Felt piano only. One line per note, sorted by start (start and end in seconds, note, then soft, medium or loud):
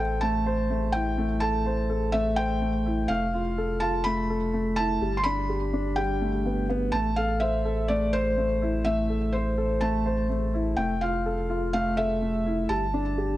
0.00 0.22 G5 medium
0.21 0.96 A5 loud
0.92 1.43 G5 loud
1.40 2.15 A5 loud
2.12 2.35 E5 loud
2.36 3.11 G5 loud
3.08 3.83 F5 loud
3.80 4.03 A5 loud
4.04 4.79 B5 loud
4.76 5.19 A5 loud
5.17 5.25 C6 medium
5.24 5.99 B5 loud
5.96 6.65 G5 loud
6.92 7.18 A5 loud
7.16 7.42 F5 loud
7.40 7.90 E5 loud
7.88 8.14 D5 loud
8.13 8.81 C5 loud
8.85 9.35 E5 loud
9.33 9.83 C5 medium
9.81 10.26 A5 loud
10.77 11.02 G5 medium
11.01 11.72 F5 medium
11.73 11.98 F5 loud
11.97 12.72 E5 loud
12.69 13.37 A5 loud